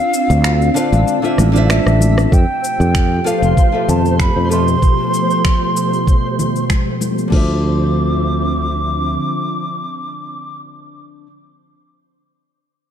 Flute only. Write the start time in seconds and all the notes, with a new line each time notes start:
Already playing: F5
1.64 F5
1.70 E5
2.33 G5
3.27 F5
3.89 A5
4.20 B5
4.52 C6
7.33 D6